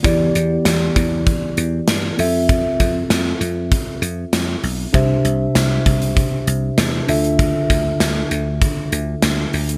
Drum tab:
HH |x-x-x-x-x-x-x-o-|x-x-x-x-x-x-x-o-|x-x-x-xxx-x-x-ox|x-x-x-x-x-x-x-ox|
TB |----x-------x---|----x-------x---|----x-------x---|----x-------x---|
SD |----o-------o---|----o-------o---|----o-------o---|----o-------o---|
BD |o-----o-o-------|o-o-----o-------|o-----o-o-------|o-o-----o-------|